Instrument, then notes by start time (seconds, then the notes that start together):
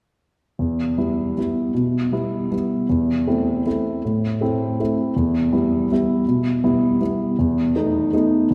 grand piano
0.59 E2
0.98 G3 B3 E4
1.37 G3 B3 E4
1.75 B2
2.12 G3 B3 E4
2.51 G3 B3 E4
2.89 E2
3.27 A3 C4 E4
3.67 A3 C4 E4
4.05 A2
4.41 A3 C4 E4
4.80 A3 C4 E4
5.16 E2
5.52 G3 B3 E4
5.92 G3 B3 E4
6.28 B2
6.64 G3 B3 E4
7.01 G3 B3 E4
7.39 E2
7.76 A3 B3 D#4
8.13 A3 B3 D#4
8.51 E2